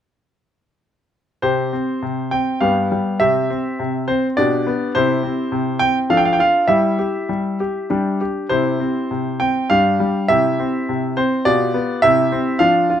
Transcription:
1.42 1.72 C3 soft
1.42 1.71 C4 soft
1.42 2.58 G4 soft
1.42 2.28 C5 medium
1.73 2.02 C4 soft
2.02 2.31 C3 soft
2.31 2.60 C4 soft
2.31 2.58 G5 medium
2.61 2.90 G2 soft
2.61 3.16 B3 soft
2.61 3.16 G4 soft
2.61 3.20 F5 medium
2.92 3.20 G3 soft
3.20 3.49 C3 soft
3.20 3.49 C4 soft
3.20 4.33 G4 soft
3.20 4.04 E5 medium
3.50 3.79 C4 soft
3.79 4.08 C3 soft
4.08 4.37 C4 soft
4.08 4.25 C5 medium
4.37 4.66 B2 soft
4.37 4.91 D4 soft
4.37 4.91 G4 soft
4.37 4.91 D5 medium
4.67 4.94 B3 soft
4.95 5.23 C3 medium
4.95 6.06 E4 soft
4.95 6.06 G4 soft
4.95 5.81 C5 medium
5.23 5.51 C4 soft
5.52 5.80 C3 soft
5.79 6.09 C4 soft
5.79 5.97 G5 medium
6.10 6.38 F3 soft
6.10 6.65 D4 soft
6.10 6.65 A4 soft
6.10 6.18 F5 medium
6.17 6.25 G5 medium
6.25 6.34 F5 medium
6.33 6.41 G5 medium
6.39 6.68 F4 soft
6.39 6.68 F5 medium
6.68 6.98 G3 soft
6.68 7.85 E4 soft
6.68 6.97 G4 soft
6.68 8.19 E5 medium
6.99 7.28 G4 soft
7.29 7.59 G3 soft
7.60 7.89 G4 soft
7.90 8.19 G3 soft
7.90 8.46 D4 soft
7.90 8.19 G4 soft
8.21 8.49 G4 soft
8.49 8.79 C3 soft
8.49 9.66 E4 soft
8.49 9.66 G4 soft
8.49 9.40 C5 medium
8.80 9.09 C4 soft
9.11 9.40 C3 soft
9.40 9.69 C4 soft
9.40 9.67 G5 medium
9.70 9.99 G2 soft
9.70 10.25 D4 soft
9.70 10.25 G4 soft
9.70 10.24 F5 medium
10.00 10.28 G3 soft
10.28 10.58 C3 soft
10.28 11.41 E4 soft
10.28 11.42 G4 soft
10.28 11.12 E5 medium
10.59 10.87 C4 soft
10.89 11.16 C3 soft
11.17 11.45 C4 soft
11.17 11.42 C5 medium
11.45 11.73 B2 medium
11.45 11.99 F4 soft
11.45 11.99 G4 soft
11.45 12.03 D5 medium
11.74 12.02 B3 soft
12.02 12.31 C3 medium
12.02 12.57 E4 soft
12.02 12.57 G4 soft
12.02 12.57 E5 medium
12.32 12.60 C4 soft
12.59 12.89 F3 soft
12.59 13.00 D4 soft
12.59 12.88 F4 soft
12.59 13.00 F5 medium
12.90 13.00 F4 soft

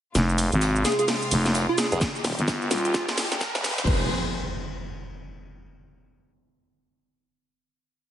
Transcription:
0.15 0.50 F1 medium
0.15 1.99 C3 medium
0.15 1.99 G#3 medium
0.15 1.99 F4 medium
0.15 snare soft
0.15 closed hi-hat medium
0.15 riser medium
0.15 shaker soft
0.15 shaker medium
0.29 shaker soft
0.38 open hi-hat loud
0.38 shaker medium
0.52 0.84 G#1 loud
0.52 closed hi-hat soft
0.52 shaker soft
0.61 snare loud
0.61 closed hi-hat medium
0.61 shaker soft
0.61 shaker medium
0.76 shaker soft
0.84 0.94 G#4 medium
0.84 snare soft
0.84 snare medium
0.84 open hi-hat medium
0.84 shaker medium
0.92 closed hi-hat medium
0.98 1.05 G#4 medium
0.98 closed hi-hat soft
0.98 closed hi-hat medium
0.98 shaker soft
1.08 snare medium
1.08 closed hi-hat medium
1.08 open hi-hat medium
1.08 shaker soft
1.22 shaker soft
1.31 1.67 F1 medium
1.31 snare soft
1.31 open hi-hat loud
1.31 shaker medium
1.46 snare medium
1.46 closed hi-hat medium
1.46 shaker soft
1.54 snare loud
1.54 closed hi-hat medium
1.54 shaker medium
1.54 shaker soft
1.69 1.76 F4 loud
1.78 1.87 G#4 medium
1.78 snare medium
1.78 open hi-hat medium
1.78 shaker medium
1.92 2.00 F1 loud
1.92 1.98 G#4 medium
1.92 closed hi-hat medium
1.92 shaker soft
2.01 3.86 D#3 medium
2.01 3.86 A#3 medium
2.01 3.86 G4 medium
2.01 kick loud
2.01 snare medium
2.01 closed hi-hat medium
2.01 shaker medium
2.01 shaker soft
2.15 snare soft
2.15 shaker soft
2.25 2.36 D#1 loud
2.25 snare medium
2.25 snare soft
2.25 open hi-hat loud
2.25 shaker medium
2.39 2.70 G1 loud
2.39 closed hi-hat medium
2.39 shaker soft
2.47 kick loud
2.47 snare loud
2.47 snare medium
2.47 closed hi-hat medium
2.47 shaker soft
2.47 shaker medium
2.62 shaker soft
2.71 3.06 D#1 loud
2.71 3.37 F4 loud
2.71 snare medium
2.71 open hi-hat loud
2.71 shaker medium
2.78 closed hi-hat medium
2.85 closed hi-hat medium
2.85 shaker soft
2.94 kick loud
2.94 snare medium
2.94 closed hi-hat medium
2.94 shaker medium
2.94 shaker soft
3.08 snare medium
3.08 shaker soft
3.18 snare loud
3.18 open hi-hat loud
3.18 shaker medium
3.32 snare medium
3.32 closed hi-hat medium
3.32 shaker soft
3.41 kick loud
3.41 snare loud
3.41 closed hi-hat medium
3.41 shaker medium
3.41 shaker soft
3.55 3.76 D#1 loud
3.55 snare medium
3.55 shaker soft
3.64 snare loud
3.64 open hi-hat loud
3.64 shaker medium
3.78 3.86 D#1 medium
3.78 snare soft
3.78 snare medium
3.78 closed hi-hat soft
3.78 shaker soft
3.87 4.09 F1 loud
3.87 4.09 F3 medium
3.87 4.09 C4 medium
3.87 4.09 G#4 medium
3.87 kick loud
3.87 crash medium
3.87 impact medium

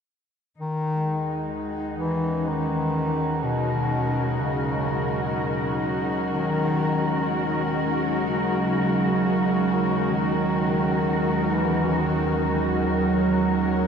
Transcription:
0.58 13.87 D#2 medium
0.58 1.49 D#3 medium
0.58 13.87 F#3 medium
0.58 13.87 D#4 medium
0.58 13.87 F#4 medium
0.58 13.87 F#5 medium
0.94 13.87 G#3 medium
1.99 2.49 E3 medium
2.22 13.87 C#4 medium
2.48 3.45 D#3 medium
3.12 13.87 F#4 medium
3.34 13.87 A#4 medium
3.44 4.42 B2 medium
4.40 5.82 C#3 medium
6.32 7.69 D#3 loud
8.21 10.12 C#3 medium
10.10 11.54 D#3 medium
11.53 12.02 E3 medium
12.00 12.69 D#3 medium
12.96 13.87 F#3 medium

